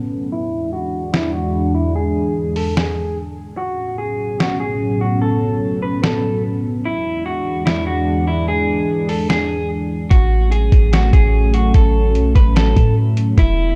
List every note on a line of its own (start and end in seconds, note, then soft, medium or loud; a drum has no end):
0.00 0.28 A2 medium
0.00 0.28 F#3 medium
0.00 0.28 B3 medium
0.00 0.28 C#4 medium
0.32 3.55 E2 medium
0.32 3.55 E3 medium
0.32 3.55 G#3 medium
0.32 3.55 D4 medium
0.32 0.70 E4 loud
0.73 1.11 F#4 medium
1.13 1.32 E4 medium
1.13 snare loud
1.34 1.72 F#4 medium
1.75 1.94 E4 medium
1.96 2.53 G#4 medium
2.56 2.76 A4 medium
2.56 open hi-hat medium
2.77 3.15 G#4 medium
2.77 snare loud
3.57 6.81 A2 medium
3.57 6.81 F#3 medium
3.57 6.81 B3 medium
3.57 6.81 C#4 medium
3.57 3.96 F#4 loud
3.98 4.37 G#4 medium
4.40 4.59 F#4 medium
4.40 snare loud
4.60 4.98 G#4 medium
5.01 5.20 F#4 medium
5.22 5.79 A4 medium
5.82 6.02 B4 medium
6.03 6.41 A4 medium
6.03 snare loud
6.84 10.08 E2 medium
6.84 10.08 E3 medium
6.84 10.08 G#3 medium
6.84 10.08 D4 medium
6.84 7.23 E4 loud
7.26 7.64 F#4 medium
7.66 7.85 E4 medium
7.66 snare loud
7.87 8.25 F#4 medium
8.27 8.47 E4 medium
8.48 9.06 G#4 medium
9.09 9.28 A4 medium
9.09 open hi-hat medium
9.30 9.68 G#4 medium
9.30 snare loud
10.10 10.70 A1 loud
10.10 13.34 F#3 medium
10.10 13.34 A3 medium
10.10 13.34 C#4 medium
10.10 10.49 F#4 loud
10.10 kick loud
10.10 closed hi-hat medium
10.51 10.90 G#4 medium
10.51 closed hi-hat medium
10.72 11.11 A1 loud
10.72 kick loud
10.72 closed hi-hat medium
10.93 11.12 F#4 medium
10.93 snare loud
10.93 closed hi-hat medium
11.13 11.72 A1 loud
11.13 11.52 G#4 medium
11.13 kick loud
11.13 closed hi-hat medium
11.54 11.74 F#4 medium
11.54 closed hi-hat medium
11.74 12.17 A1 loud
11.74 12.32 A4 medium
11.74 kick loud
11.74 closed hi-hat medium
12.15 12.35 B1 loud
12.15 closed hi-hat medium
12.35 12.75 A1 loud
12.35 12.55 B4 medium
12.35 kick loud
12.35 closed hi-hat medium
12.56 12.94 A4 medium
12.56 snare loud
12.56 closed hi-hat medium
12.76 13.35 A2 loud
12.76 kick loud
12.76 closed hi-hat medium
13.17 closed hi-hat medium
13.38 13.75 E1 loud
13.38 13.75 E3 medium
13.38 13.75 B3 medium
13.38 13.75 D4 medium
13.38 13.75 E4 loud
13.38 13.75 G#4 medium
13.38 kick loud
13.38 closed hi-hat medium